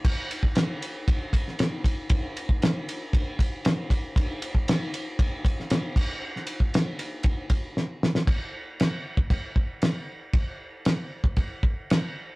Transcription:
\new DrumStaff \with { instrumentName = "Drums" } \drummode { \time 4/4 \tempo 4 = 116 <cymc bd>8 cymr16 bd16 <cymr sn>8 cymr8 <bd cymr>8 <bd cymr>16 sn16 <cymr sn>8 <bd cymr>8 | <bd cymr>8 cymr16 bd16 <cymr sn>8 cymr8 <bd cymr>8 <bd cymr>8 <cymr sn>8 <bd cymr>8 | <bd cymr>8 cymr16 bd16 <cymr sn>8 cymr8 <bd cymr>8 <bd cymr>16 sn16 <cymr sn>8 <cymc bd>8 | r16 sn16 cymr16 bd16 <cymr sn>8 cymr8 <bd cymr>8 <bd cymr>8 sn8 sn16 sn16 |
<cymc bd>4 <cymc sn>8. bd16 <cymc bd>8 bd8 <cymc sn>4 | <cymc bd>4 <cymc sn>8. bd16 <cymc bd>8 bd8 <cymc sn>4 | }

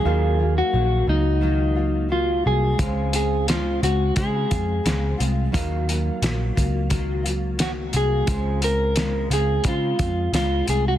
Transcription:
<<
  \new Staff \with { instrumentName = "Clean electric guitar" } { \time 4/4 \key des \major \tempo 4 = 88 aes'8. ges'8. ees'4. f'8 aes'8~ | aes'8 aes'8 f'8 ges'8 aes'4. r8 | r2. ges'8 aes'8~ | aes'8 bes'4 aes'8 f'4 f'8 aes'16 ges'16 | }
  \new Staff \with { instrumentName = "Reed electric piano" } { \time 4/4 \key des \major <ges ees' bes' f''>1 | <aes des' c'' f''>1 | <ges ees' bes' f''>1 | <aes des' f' c''>1 | }
  \new Staff \with { instrumentName = "Nylon-string guitar" } { \time 4/4 \key des \major <ees ges bes f'>8 <ges bes f'>8 <ees ges bes>8 <ges bes f'>8 <ees ges bes f'>8 <ges bes f'>8 <ees ges bes f'>8 <ges bes f'>8 | <des aes c' f'>8 <aes c' f'>8 <des aes c' f'>8 <aes c'>8 <des aes c' f'>8 <aes c' f'>8 <des aes c' f'>8 <aes c' f'>8 | <ees ges bes f'>8 <ges bes f'>8 <ees ges bes f'>8 <ges bes f'>8 <ees ges bes f'>8 <ges bes f'>8 <ees ges bes>8 <ges bes f'>8 | <des aes c' f'>8 <aes c' f'>8 <des aes c' f'>8 <aes c' f'>8 <des aes c' f'>8 <aes c' f'>8 <des aes c' f'>8 <aes c' f'>8 | }
  \new Staff \with { instrumentName = "Picked electric bass" } { \clef bass \time 4/4 \key des \major ees,4 bes,,8 des,2 c,8 | des,4. des,8 des8 f,8 des,8 c,8 | ees,4 bes,,8 des,2 c,8 | des,4. des,8 des8 f,8 des,8 c,8 | }
  \new DrumStaff \with { instrumentName = "Drums" } \drummode { \time 4/4 r4 r4 r4 r4 | <hh bd>8 hh8 <hh sn>8 hh8 <hh bd>8 <hh bd>8 <hh sn>8 hh8 | <hh bd>8 hh8 <hh sn>8 <hh bd>8 <hh bd>8 hh8 <hh sn>8 hh8 | <hh bd>8 hh8 <hh sn>8 hh8 <hh bd>8 <hh bd>8 <hh sn>8 hh8 | }
>>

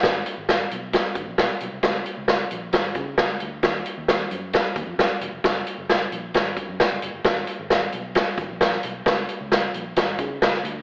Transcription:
<<
  \new Staff \with { instrumentName = "Fingered electric bass" } { \clef bass \time 4/4 \key gis \dorian \tempo 4 = 133 gis,,8 r16 gis,,8. b,,8. r16 gis,,16 ais,,16 b,,16 r16 b,,16 bis,,16 | cis,8 r16 cis,8. ais,,8 gis,,8 cis8 cis,8 d,8 | dis,8 r16 dis,8. fis,8. r16 dis,16 eis,16 fis,16 r16 e,,16 eis,,16 | fis,,8 r16 fis,,8. ais,,8 gis,,8 r16 fis,16 r16 fis,,16 fis,,16 g,,16 |
gis,,8 r16 gis,,8. b,,8. r16 gis,,16 ais,,8. b,,8 | cis,8 r16 cis,8. ais,,8 gis,,8 cis8 cis,8 d,8 | }
  \new DrumStaff \with { instrumentName = "Drums" } \drummode { \time 4/4 <hh bd sn>8 hh8 <hh sn>8 hh8 <hh bd sn>8 <hh bd>8 <hh sn>8 hh8 | <hh bd sn>8 hh8 <hh sn>8 hh8 <hh bd sn>8 <hh bd>8 <hh sn>8 hh8 | <hh bd sn>8 hh8 <hh sn>8 hh8 <hh bd sn>8 <hh bd>8 <hh sn>8 hh8 | <hh bd sn>8 hh8 <hh sn>8 hh8 <hh bd sn>8 <hh bd>8 <hh sn>8 hh8 |
<hh bd sn>8 hh8 <hh sn>8 hh8 <hh bd sn>8 <hh bd>8 <hh sn>16 sn16 hh8 | <hh bd sn>8 hh8 <hh sn>8 hh8 <hh bd sn>8 <hh bd>8 <hh sn>16 sn16 hh8 | }
>>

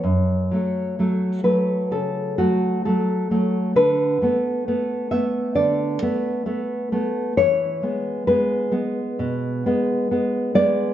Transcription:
\new Staff \with { instrumentName = "Nylon-string guitar" } { \time 4/4 \key fis \minor \tempo 4 = 66 << { cis''4. b'8 a'8 fis'8 a'4 | b'4. e''8 d''2 | cis''4 b'4. r4 d''8 | } \\ { fis,8 <fis a>8 <fis a>8 <fis a>8 cis8 <fis a>8 <fis a>8 <fis a>8 | d8 <a b>8 <a b>8 <a b>8 d8 <a b>8 <a b>8 <a b>8 | e8 <gis b>8 <gis b>8 <gis b>8 b,8 <gis b>8 <gis b>8 <gis b>8 | } >> }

